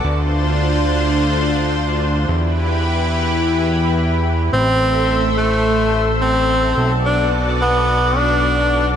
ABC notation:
X:1
M:4/4
L:1/8
Q:1/4=107
K:Am
V:1 name="Analog synth pad"
[D,DFc]8 | [E,EGB]8 | [A,Ace]8 | [B,^Fd]8 |]
V:2 name="Tenor saxophone"
z8 | z8 | C3 A,3 C2- | C D z B,2 D3 |]
V:3 name="Analog synth bass" clef=bass
D,,8 | E,,8 | A,,,8 | B,,,8 |]